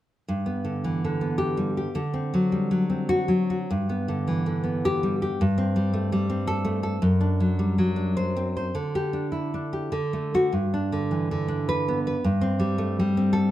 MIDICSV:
0, 0, Header, 1, 2, 480
1, 0, Start_track
1, 0, Key_signature, 1, "major"
1, 0, Tempo, 560224
1, 237, Time_signature, 3, 2, 24, 8
1, 2150, Tempo, 588235
1, 4070, Tempo, 551471
1, 6950, Tempo, 589391
1, 9350, Tempo, 552995
1, 11428, End_track
2, 0, Start_track
2, 0, Title_t, "Nylon-string guitar"
2, 0, Program_c, 0, 24
2, 244, Note_on_c, 0, 43, 44
2, 393, Note_on_c, 0, 59, 38
2, 553, Note_on_c, 0, 50, 36
2, 723, Note_on_c, 0, 52, 36
2, 885, Note_off_c, 0, 50, 0
2, 895, Note_on_c, 0, 50, 36
2, 1028, Note_off_c, 0, 59, 0
2, 1038, Note_on_c, 0, 59, 35
2, 1182, Note_on_c, 0, 67, 61
2, 1348, Note_on_c, 0, 55, 41
2, 1442, Note_off_c, 0, 52, 0
2, 1448, Note_off_c, 0, 67, 0
2, 1519, Note_on_c, 0, 67, 44
2, 1606, Note_off_c, 0, 50, 0
2, 1649, Note_off_c, 0, 43, 0
2, 1670, Note_on_c, 0, 50, 53
2, 1672, Note_off_c, 0, 55, 0
2, 1676, Note_off_c, 0, 59, 0
2, 1678, Note_off_c, 0, 67, 0
2, 1830, Note_on_c, 0, 60, 46
2, 2002, Note_on_c, 0, 54, 42
2, 2160, Note_on_c, 0, 55, 40
2, 2304, Note_off_c, 0, 54, 0
2, 2314, Note_on_c, 0, 54, 44
2, 2456, Note_off_c, 0, 60, 0
2, 2466, Note_on_c, 0, 60, 42
2, 2624, Note_on_c, 0, 66, 72
2, 2771, Note_off_c, 0, 54, 0
2, 2781, Note_on_c, 0, 54, 46
2, 2880, Note_off_c, 0, 55, 0
2, 2892, Note_off_c, 0, 66, 0
2, 2958, Note_on_c, 0, 66, 47
2, 3086, Note_off_c, 0, 50, 0
2, 3119, Note_off_c, 0, 54, 0
2, 3123, Note_off_c, 0, 66, 0
2, 3125, Note_off_c, 0, 60, 0
2, 3126, Note_on_c, 0, 43, 48
2, 3280, Note_on_c, 0, 59, 45
2, 3434, Note_on_c, 0, 50, 41
2, 3591, Note_on_c, 0, 52, 40
2, 3734, Note_off_c, 0, 50, 0
2, 3743, Note_on_c, 0, 50, 42
2, 3876, Note_off_c, 0, 59, 0
2, 3886, Note_on_c, 0, 59, 44
2, 4061, Note_on_c, 0, 67, 68
2, 4217, Note_on_c, 0, 55, 47
2, 4301, Note_off_c, 0, 52, 0
2, 4319, Note_off_c, 0, 67, 0
2, 4381, Note_on_c, 0, 67, 50
2, 4456, Note_off_c, 0, 50, 0
2, 4513, Note_off_c, 0, 43, 0
2, 4529, Note_off_c, 0, 59, 0
2, 4540, Note_off_c, 0, 55, 0
2, 4544, Note_off_c, 0, 67, 0
2, 4546, Note_on_c, 0, 43, 57
2, 4692, Note_on_c, 0, 60, 50
2, 4850, Note_on_c, 0, 55, 46
2, 5004, Note_on_c, 0, 57, 43
2, 5157, Note_off_c, 0, 55, 0
2, 5168, Note_on_c, 0, 55, 51
2, 5308, Note_off_c, 0, 60, 0
2, 5318, Note_on_c, 0, 60, 48
2, 5473, Note_on_c, 0, 69, 75
2, 5612, Note_off_c, 0, 57, 0
2, 5622, Note_on_c, 0, 57, 51
2, 5739, Note_off_c, 0, 69, 0
2, 5784, Note_on_c, 0, 69, 53
2, 5888, Note_off_c, 0, 55, 0
2, 5940, Note_off_c, 0, 43, 0
2, 5947, Note_on_c, 0, 42, 58
2, 5959, Note_off_c, 0, 57, 0
2, 5960, Note_off_c, 0, 69, 0
2, 5965, Note_off_c, 0, 60, 0
2, 6110, Note_on_c, 0, 62, 49
2, 6282, Note_on_c, 0, 54, 46
2, 6444, Note_on_c, 0, 55, 46
2, 6602, Note_off_c, 0, 54, 0
2, 6613, Note_on_c, 0, 54, 46
2, 6757, Note_off_c, 0, 62, 0
2, 6768, Note_on_c, 0, 62, 44
2, 6946, Note_on_c, 0, 72, 63
2, 7104, Note_off_c, 0, 55, 0
2, 7108, Note_on_c, 0, 60, 47
2, 7197, Note_off_c, 0, 72, 0
2, 7272, Note_on_c, 0, 72, 45
2, 7337, Note_off_c, 0, 54, 0
2, 7373, Note_off_c, 0, 42, 0
2, 7411, Note_off_c, 0, 62, 0
2, 7419, Note_on_c, 0, 50, 51
2, 7420, Note_off_c, 0, 60, 0
2, 7424, Note_off_c, 0, 72, 0
2, 7585, Note_on_c, 0, 67, 53
2, 7733, Note_on_c, 0, 62, 37
2, 7840, Note_off_c, 0, 67, 0
2, 7884, Note_on_c, 0, 64, 36
2, 8055, Note_off_c, 0, 62, 0
2, 8065, Note_on_c, 0, 62, 39
2, 8218, Note_on_c, 0, 67, 39
2, 8361, Note_off_c, 0, 50, 0
2, 8373, Note_on_c, 0, 50, 58
2, 8381, Note_off_c, 0, 64, 0
2, 8386, Note_off_c, 0, 67, 0
2, 8391, Note_off_c, 0, 62, 0
2, 8547, Note_on_c, 0, 57, 43
2, 8709, Note_off_c, 0, 57, 0
2, 8719, Note_on_c, 0, 57, 44
2, 8722, Note_on_c, 0, 66, 61
2, 8854, Note_off_c, 0, 50, 0
2, 8862, Note_off_c, 0, 57, 0
2, 8864, Note_off_c, 0, 66, 0
2, 8867, Note_on_c, 0, 43, 51
2, 9040, Note_on_c, 0, 62, 47
2, 9192, Note_on_c, 0, 50, 40
2, 9344, Note_on_c, 0, 52, 38
2, 9509, Note_off_c, 0, 50, 0
2, 9519, Note_on_c, 0, 50, 45
2, 9656, Note_off_c, 0, 62, 0
2, 9667, Note_on_c, 0, 62, 44
2, 9844, Note_on_c, 0, 71, 64
2, 10015, Note_on_c, 0, 59, 47
2, 10083, Note_off_c, 0, 52, 0
2, 10103, Note_off_c, 0, 71, 0
2, 10176, Note_on_c, 0, 71, 53
2, 10249, Note_off_c, 0, 50, 0
2, 10284, Note_off_c, 0, 43, 0
2, 10319, Note_off_c, 0, 62, 0
2, 10328, Note_on_c, 0, 43, 56
2, 10329, Note_off_c, 0, 71, 0
2, 10330, Note_off_c, 0, 59, 0
2, 10475, Note_on_c, 0, 60, 54
2, 10632, Note_on_c, 0, 55, 44
2, 10795, Note_on_c, 0, 57, 46
2, 10969, Note_off_c, 0, 55, 0
2, 10979, Note_on_c, 0, 55, 50
2, 11122, Note_off_c, 0, 60, 0
2, 11133, Note_on_c, 0, 60, 50
2, 11268, Note_on_c, 0, 69, 74
2, 11423, Note_off_c, 0, 57, 0
2, 11428, Note_off_c, 0, 43, 0
2, 11428, Note_off_c, 0, 55, 0
2, 11428, Note_off_c, 0, 60, 0
2, 11428, Note_off_c, 0, 69, 0
2, 11428, End_track
0, 0, End_of_file